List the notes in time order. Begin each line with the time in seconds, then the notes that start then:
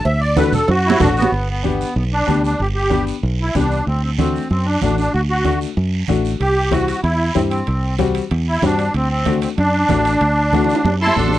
0.05 D2 E5, cowbell, high conga, long guiro
0.21 D5
0.37 D4 F#4 A4 B4, cowbell, high conga, high timbale, short guiro
0.52 A4, low conga, short guiro
0.68 F#2 F#4, cowbell, high conga, high timbale, long guiro
0.86 E4, low timbale
1.00 A1 D4 F#4 A4, cowbell, high conga, low conga, low timbale, short guiro
1.17 B3, short guiro
1.22 low timbale
1.32 G1, high conga, long guiro
1.50 B3
1.63 B3 D4 G4, high conga, short guiro
1.81 short guiro
1.96 B1 B3, high conga, long guiro
2.13 D4
2.27 D2 B3 D4 G4, high conga, short guiro
2.44 D4, short guiro
2.59 G1 G4, high conga, long guiro
2.75 G4
2.90 B3 D4 G4, high conga, short guiro
3.07 short guiro
3.23 B1, high conga, long guiro
3.42 E4
3.55 C2 B3 D4 G4, high conga, short guiro
3.71 short guiro
3.87 D2 C4, high conga, long guiro
4.03 C4
4.18 A3 C4 D4 F#4, high conga, short guiro
4.36 short guiro
4.50 F#2 C4, high conga, long guiro
4.65 D4
4.82 A1 A3 D4 F#4, high conga, short guiro
4.98 D4, short guiro
5.13 D2 F#4, high conga, long guiro
5.30 F#4
5.44 A3 D4 F#4, high conga, short guiro
5.61 short guiro
5.77 F#2, high conga, long guiro
6.08 A1 A3 D4 F#4, high conga, short guiro
6.25 short guiro
6.40 C2 G4, high conga, high timbale, long guiro
6.71 G3 C4 E4 F#4, high conga, high timbale, short guiro
6.88 high timbale, short guiro
7.03 E2 E4, high conga, high timbale, long guiro
7.34 G2 G3 C4 E4, high conga, high timbale, short guiro
7.50 C4, high timbale, short guiro
7.67 C2, high conga, high timbale, long guiro
7.98 G3 C4 F#4, high conga, high timbale, short guiro
8.15 high timbale, short guiro
8.30 E2, high conga, high timbale, long guiro
8.48 E4
8.62 G2 G3 C4 D4 F#4, high conga, high timbale, short guiro
8.79 high timbale, short guiro
8.94 D2 C4, high conga, high timbale, long guiro
9.10 C4
9.26 A3 D4 F#4, high conga, high timbale, short guiro
9.42 C4, high timbale, short guiro
9.57 F#2 D4, high conga, high timbale, long guiro
9.89 A1 A3 D4 F#4, high conga, high timbale, low timbale, short guiro
10.05 high timbale, short guiro
10.21 D2, high conga, high timbale
10.53 A3 D4 F#4, high conga, high timbale, short guiro
10.64 high timbale
10.69 short guiro
10.75 high timbale
10.84 F#2, high conga, low timbale, long guiro
11.01 E4 A4 A5 C6
11.07 low timbale
11.16 A1 A3 D4 F#4, high conga, short guiro
11.28 low timbale
11.33 short guiro